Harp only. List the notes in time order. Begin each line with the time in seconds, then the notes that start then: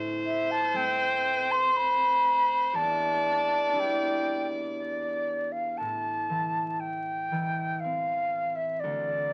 Already playing: A2 A3 D4 F4
0.74 A3 C4 A4
2.73 E2
3.72 D4 E4 G4
5.80 A2
6.29 E3
7.32 E3
7.84 C4
8.83 D2